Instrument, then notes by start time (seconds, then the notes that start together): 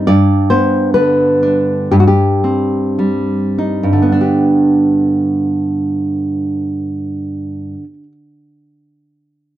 nylon-string guitar
0.07 G2 D5
0.50 B3 C5
0.94 D3 B4
1.43 D4
1.91 G2 G4
2.00 F#4
2.07 G4
2.44 C4
2.99 G3
3.58 D#4
3.83 G2
3.93 D3
4.02 B3
4.12 D4
4.21 G4